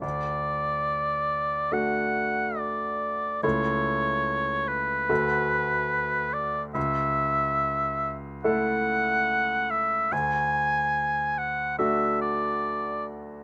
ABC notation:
X:1
M:4/4
L:1/8
Q:1/4=71
K:Dlyd
V:1 name="Oboe"
d4 f2 d2 | c3 B4 d | e3 z f3 e | g3 f e d2 z |]
V:2 name="Grand piano"
D,,4 [A,DF]4 | [C,,A,EA]4 [D,,A,FA]4 | C,,4 [A,EA]4 | D,,4 [A,DF]4 |]